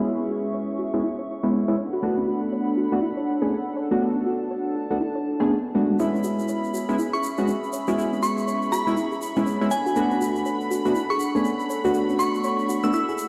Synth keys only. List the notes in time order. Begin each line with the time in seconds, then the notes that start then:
0.04 G#3 B3 C#4 E4
0.94 G#3 B3 C#4 E4
1.43 G#3 B3 C#4 E4
1.68 G#3 B3 C#4 E4
2.02 A3 B3 D4 F#4
2.92 A3 B3 D4 F#4
3.42 A3 B3 D4 G#4
3.91 A3 B3 D4 F#4
4.01 A3 B3 D4 F#4
4.90 A3 B3 D4 F#4
5.40 A3 B3 D4 G#4
5.75 A3 B3 D4 F#4
5.99 G#3 B3 C#4 E4
6.89 G#3 B3 C#4 E4
7.38 G#3 B3 C#4 F#4
7.88 G#3 B3 C#4 E4
7.98 G#3 B3 C#4 E4
8.87 G#3 B3 C#4 E4
9.36 G#3 B3 C#4 E4
9.61 G#3 B3 C#4 E4
9.96 A3 B3 D4 F#4
10.85 A3 B3 D4 F#4
11.35 A3 B3 D4 G#4
11.84 A3 B3 D4 F#4
11.94 A3 B3 D4 F#4
12.84 A3 B3 D4 F#4